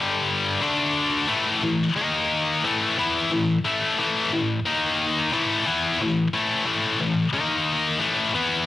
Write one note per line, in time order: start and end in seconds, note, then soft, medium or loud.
0.00 0.60 G2 loud
0.00 0.60 D3 loud
0.00 0.60 G3 loud
0.62 1.28 D3 medium
0.62 1.28 A3 medium
0.62 1.28 D4 medium
1.29 1.61 A2 loud
1.29 1.61 E3 medium
1.29 1.61 A3 loud
1.63 1.89 A2 medium
1.63 1.90 E3 medium
1.96 2.62 D#3 medium
1.96 2.62 A#3 medium
1.96 2.63 D#4 loud
2.64 2.96 A2 medium
2.64 2.96 E3 loud
2.64 2.96 A3 loud
2.98 3.30 E3 loud
2.98 3.30 B3 loud
2.98 3.30 E4 loud
3.31 3.57 A2 medium
3.31 3.58 E3 medium
3.65 3.97 A2 medium
3.65 3.97 E3 medium
3.65 3.97 A3 loud
3.99 4.30 A2 medium
3.99 4.31 E3 loud
3.99 4.31 A3 loud
4.32 4.58 A2 medium
4.32 4.59 E3 medium
4.66 5.31 D#3 loud
4.66 5.31 A#3 loud
4.66 5.31 D#4 loud
5.33 5.64 A2 loud
5.33 5.65 E3 loud
5.33 5.65 A3 loud
5.66 5.98 E3 loud
5.66 5.98 B3 loud
5.66 5.98 E4 loud
6.01 6.26 A2 medium
6.01 6.27 E3 medium
6.33 6.64 A2 medium
6.33 6.65 E3 loud
6.33 6.65 A3 loud
6.66 6.98 A2 loud
6.66 6.98 E3 loud
6.66 6.99 A3 loud
7.00 7.26 A2 medium
7.00 7.26 E3 medium
7.33 7.99 D#3 medium
7.33 7.99 A#3 medium
7.33 7.99 D#4 loud
8.00 8.32 A2 loud
8.00 8.32 E3 loud
8.00 8.32 A3 loud
8.34 8.66 E3 medium
8.34 8.66 B3 loud
8.34 8.66 E4 loud